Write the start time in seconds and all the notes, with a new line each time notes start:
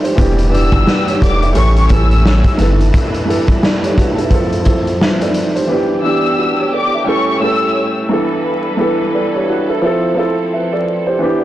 Already playing: F3 C4 E4 A4 B4 D5 E5
0.03 G4 C5, closed hi-hat
0.15 E1 E3 B3 D4 G4, kick, closed hi-hat
0.20 G4
0.39 closed hi-hat
0.50 E3 B3 D4 E6
0.54 G4, closed hi-hat
0.72 G1, kick, closed hi-hat
0.87 F#4 B4, snare
1.07 G4 C#5, closed hi-hat
1.22 E1 A4 D5 D6, kick, closed hi-hat
1.42 B4 E5, closed hi-hat
1.52 A1 A2 G3 A3 C#4 E4 C#5 C#6, closed hi-hat
1.57 A4
1.76 C#6, closed hi-hat
1.88 A1 A2 G3 C#4 E6, kick, closed hi-hat
1.93 A4
2.11 closed hi-hat
2.26 snare
2.44 kick, closed hi-hat
2.57 G1 G2 E3 G3 B3 A4 B4, snare, closed hi-hat
2.62 A4
2.80 closed hi-hat
2.94 kick, closed hi-hat
3.14 closed hi-hat
3.25 G2 E3 B3
3.30 A4, closed hi-hat
3.48 kick, closed hi-hat
3.63 A4 D5, snare
3.83 G4 C#5, closed hi-hat
3.98 F#4 B4, kick, closed hi-hat
4.18 E4 A4, closed hi-hat
4.30 F3 C4 E4, kick, closed hi-hat
4.35 A4
4.52 closed hi-hat
4.63 F3 C4 E4, kick, closed hi-hat
4.68 A4
4.87 closed hi-hat
5.01 B4 E5, snare
5.21 A4 D5, closed hi-hat
5.34 closed hi-hat
5.56 G4 C5, closed hi-hat
5.67 E3 B3 D4 G4
5.72 G4
6.02 E3 B3 D4 E6
6.06 G4
6.38 F#4 B4
6.59 G4 C#5
6.74 A4 D5 D6
6.94 B4 E5
7.04 A2 G3 A3 C#4 E4 C#5
7.09 A4 C#6
7.28 C#6
7.40 A2 G3 C#4 E6
7.44 A4
8.09 G2 E3 G3 B3 A4 B4
8.13 A4
8.77 G2 E3 B3
8.81 A4
9.14 A4 D5
9.34 G4 C#5
9.49 F#4 B4
9.70 E4 A4
9.82 F3 C4 E4
9.86 A4
10.15 F3 C4 E4
10.19 A4
10.53 B4 E5
10.73 A4 D5
11.07 G4 C5
11.19 E3 B3 D4 G4
11.23 G4